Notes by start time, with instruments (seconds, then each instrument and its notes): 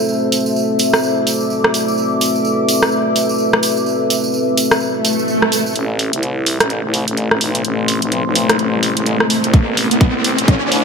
Already playing: analog synth pad A3 C4 F#4 C5, ambient pad A4 E5 C6
0.09 ambient pad D6, tambourine
0.32 open hi-hat, tambourine
0.46 tambourine
0.56 tambourine
0.79 open hi-hat, tambourine
0.94 cross-stick, tambourine
1.03 tambourine
1.27 open hi-hat, tambourine
1.40 tambourine
1.50 tambourine
1.64 cross-stick
1.74 open hi-hat, tambourine
1.88 tambourine
1.98 analog synth pad B4, tambourine
2.21 open hi-hat, tambourine
2.36 tambourine
2.45 tambourine
2.69 open hi-hat, tambourine
2.83 cross-stick
2.92 tambourine
3.16 open hi-hat, tambourine
3.29 tambourine
3.38 tambourine
3.53 cross-stick
3.63 open hi-hat, tambourine
3.77 tambourine
3.86 tambourine
4.10 open hi-hat, tambourine
4.24 tambourine
4.34 tambourine
4.57 open hi-hat, tambourine
4.71 cross-stick, tambourine
4.80 tambourine, swell
5.04 open hi-hat, tambourine
5.19 tambourine
5.28 tambourine
5.42 cross-stick
5.52 open hi-hat, tambourine
5.66 tambourine
5.76 fm bass A1, analog synth pad A3 C4 E4 C5, closed hi-hat, riser
5.99 open hi-hat
6.13 fm bass C2, closed hi-hat
6.23 closed hi-hat
6.46 open hi-hat
6.60 fm bass A1, cross-stick, closed hi-hat
6.67 ambient pad C6, closed hi-hat
6.84 fm bass C2
6.94 open hi-hat
7.08 fm bass A1, closed hi-hat
7.17 closed hi-hat
7.31 fm bass A1, cross-stick
7.41 fm bass B1, open hi-hat
7.55 closed hi-hat
7.65 fm bass A1, closed hi-hat
7.88 open hi-hat
8.02 fm bass B1, closed hi-hat
8.12 closed hi-hat
8.26 fm bass B1
8.35 open hi-hat
8.49 cross-stick, closed hi-hat
8.59 fm bass A1, closed hi-hat
8.83 open hi-hat
8.97 fm bass A1, closed hi-hat
9.06 closed hi-hat
9.20 cross-stick
9.30 open hi-hat
9.44 fm bass C2, closed hi-hat
9.54 fm bass A1, kick, closed hi-hat
9.77 open hi-hat
9.89 fm bass C2, ambient pad D6, closed hi-hat
10.01 kick, closed hi-hat
10.24 open hi-hat
10.38 fm bass A1, closed hi-hat
10.48 kick, closed hi-hat
10.62 fm bass C2
10.72 open hi-hat